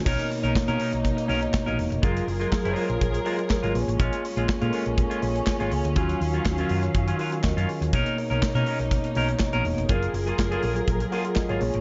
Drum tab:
CC |x---------------|----------------|----------------|----------------|
HH |-xox-xoxxxox-xox|xxox-xoxxxox-xox|xxox-xoxxxox-xox|xxox-xoxxxox-xox|
CP |----x-------x---|----x-------x---|----x-------x---|----x-------x---|
SD |----o-------o---|----o-------o---|----o-------o---|----o-------o---|
BD |o---o---o---o---|o---o---o---o---|o---o---o---o---|o---o---o---o---|

CC |----------------|----------------|
HH |xxox-xoxxxox-xox|xxox-xoxxxox-xox|
CP |----x-------x---|----x-------x---|
SD |----o-------o---|----o-------o---|
BD |o---o---o---o---|o---o---o---o---|